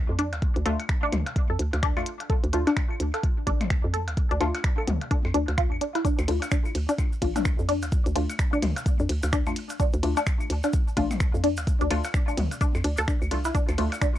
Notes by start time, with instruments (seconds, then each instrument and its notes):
0.09 fm bass F2
0.19 synth arpeggio sound D4, closed hi-hat
0.33 fm bass D2, closed hi-hat, percussion blips
0.42 kick, closed hi-hat
0.56 fm bass D2, closed hi-hat
0.66 fm bass D2, synth stab A3 D4 F4, synth arpeggio sound A4, closed hi-hat
0.80 closed hi-hat, claves, percussion blips
0.89 finger snap, kick, closed hi-hat
1.03 synth arpeggio sound D4, claves
1.12 fm bass D2, closed hi-hat, mid tom, percussion blips
1.26 closed hi-hat, percussion blips
1.36 kick, closed hi-hat
1.50 fm bass F2, synth arpeggio sound A4
1.59 fm bass D2, closed hi-hat
1.73 fm bass D2, closed hi-hat, percussion blips
1.83 synth arpeggio sound D4, finger snap, kick, closed hi-hat
1.97 fm bass F2, synth stab A3 D4 F4, claves, percussion blips
2.06 closed hi-hat
2.20 closed hi-hat, percussion blips
2.30 synth arpeggio sound A4, kick, closed hi-hat
2.44 fm bass D2, closed hi-hat
2.53 fm bass D2, synth stab A3 D4 F4, closed hi-hat
2.67 synth arpeggio sound D4, closed hi-hat, claves, percussion blips
2.77 finger snap, kick, closed hi-hat, percussion blips
2.91 claves
3.00 fm bass D2, closed hi-hat
3.14 synth arpeggio sound A4, closed hi-hat, percussion blips
3.23 kick, closed hi-hat
3.47 fm bass A1, synth arpeggio sound D4, kick, closed hi-hat
3.61 closed hi-hat, mid tom, percussion blips
3.70 fm bass D2, finger snap, kick, closed hi-hat
3.84 fm bass F2
3.94 synth arpeggio sound A4, closed hi-hat
4.08 fm bass D2, closed hi-hat, percussion blips
4.17 kick, closed hi-hat
4.31 fm bass D2, synth arpeggio sound D4, closed hi-hat
4.41 fm bass D2, synth stab A3 D4 F4, closed hi-hat, percussion blips
4.55 closed hi-hat, claves, percussion blips
4.64 finger snap, kick, closed hi-hat
4.78 synth arpeggio sound A4, claves
4.87 fm bass D2, closed hi-hat, mid tom
5.01 closed hi-hat, percussion blips
5.11 synth arpeggio sound D4, kick, closed hi-hat
5.25 fm bass F2, percussion blips
5.34 fm bass D2, synth arpeggio sound D4, closed hi-hat
5.48 fm bass D2, closed hi-hat, percussion blips
5.58 synth arpeggio sound F4, finger snap, kick, closed hi-hat
5.72 fm bass F2, claves
5.81 synth arpeggio sound D4, closed hi-hat
5.95 synth arpeggio sound E4, closed hi-hat, percussion blips
6.05 synth arpeggio sound D4, kick, closed hi-hat, cabasa
6.19 fm bass D2, closed hi-hat, cabasa, percussion blips
6.28 fm bass D2, synth stab A3 D4 F4, closed hi-hat, ride
6.42 closed hi-hat, cabasa, claves, percussion blips
6.51 synth arpeggio sound D4, finger snap, kick, closed hi-hat, cabasa
6.65 cabasa, claves
6.75 fm bass D2, closed hi-hat, ride
6.89 synth arpeggio sound D4, closed hi-hat, cabasa, percussion blips
6.98 kick, closed hi-hat, cabasa, percussion blips
7.12 cabasa
7.22 fm bass A1, synth stab A3 D4 F4, kick, closed hi-hat, ride
7.36 synth arpeggio sound D4, closed hi-hat, mid tom, cabasa, percussion blips
7.45 fm bass D2, finger snap, kick, closed hi-hat, cabasa
7.59 fm bass F2, cabasa
7.69 synth arpeggio sound D4, closed hi-hat, ride
7.82 fm bass D2, closed hi-hat, cabasa, percussion blips
7.92 kick, closed hi-hat, cabasa
8.06 fm bass D2, closed hi-hat, cabasa
8.16 fm bass D2, synth stab A3 D4 F4, synth arpeggio sound D4, closed hi-hat, ride
8.30 closed hi-hat, cabasa, claves, percussion blips
8.39 finger snap, kick, closed hi-hat, cabasa
8.53 synth arpeggio sound D4, cabasa, claves
8.62 fm bass D2, closed hi-hat, mid tom, ride, percussion blips
8.76 closed hi-hat, cabasa, percussion blips
8.86 kick, closed hi-hat, cabasa
8.99 fm bass F2, synth arpeggio sound D4, cabasa
9.09 fm bass D2, closed hi-hat, ride
9.23 fm bass D2, closed hi-hat, cabasa, percussion blips
9.33 synth arpeggio sound D4, finger snap, kick, closed hi-hat, cabasa
9.46 fm bass F2, synth stab A3 D4 F4, cabasa, claves, percussion blips
9.56 closed hi-hat, ride
9.70 closed hi-hat, cabasa, percussion blips
9.80 synth arpeggio sound D4, kick, closed hi-hat, cabasa
9.93 fm bass D2, closed hi-hat, cabasa
10.03 fm bass D2, synth stab A3 D4 F4, closed hi-hat, ride
10.17 synth arpeggio sound D4, closed hi-hat, cabasa, claves, percussion blips
10.27 finger snap, kick, closed hi-hat, cabasa, percussion blips
10.40 cabasa, claves
10.50 fm bass D2, closed hi-hat, ride
10.63 synth arpeggio sound D4, closed hi-hat, cabasa, percussion blips
10.73 kick, closed hi-hat, cabasa
10.88 cabasa
10.97 fm bass A1, synth stab A3 D4 F4, synth arpeggio sound D4, kick, closed hi-hat, ride
11.11 closed hi-hat, mid tom, cabasa, percussion blips
11.20 fm bass D2, finger snap, kick, closed hi-hat, cabasa
11.34 fm bass F2, cabasa
11.44 synth arpeggio sound D4, closed hi-hat, ride
11.57 fm bass D2, closed hi-hat, cabasa, percussion blips
11.67 kick, closed hi-hat, cabasa
11.81 fm bass D2, synth arpeggio sound D4, closed hi-hat, cabasa
11.91 fm bass D2, synth stab A3 D4 F4, closed hi-hat, ride, percussion blips
12.04 closed hi-hat, cabasa, claves, percussion blips
12.14 finger snap, kick, closed hi-hat, cabasa
12.28 synth arpeggio sound D4, cabasa, claves
12.37 fm bass D2, closed hi-hat, mid tom, ride
12.51 closed hi-hat, cabasa, percussion blips
12.61 synth arpeggio sound D4, kick, closed hi-hat, cabasa
12.75 fm bass F2, cabasa, percussion blips
12.84 fm bass D2, synth arpeggio sound D4, closed hi-hat, ride
12.97 fm bass D2, synth arpeggio sound A4, closed hi-hat, cabasa, percussion blips
13.08 synth arpeggio sound D4, finger snap, kick, closed hi-hat, cabasa
13.22 fm bass D2, cabasa, claves
13.31 fm bass C2, synth stab A3 D4 F4, closed hi-hat, ride
13.45 synth arpeggio sound E4, closed hi-hat, cabasa, percussion blips
13.55 synth arpeggio sound D4, kick, closed hi-hat, cabasa
13.68 fm bass D2, closed hi-hat, cabasa, percussion blips
13.78 fm bass D2, synth stab A3 D4 F4, closed hi-hat, ride
13.92 closed hi-hat, cabasa, claves, percussion blips
14.02 synth arpeggio sound D4, finger snap, kick, closed hi-hat, cabasa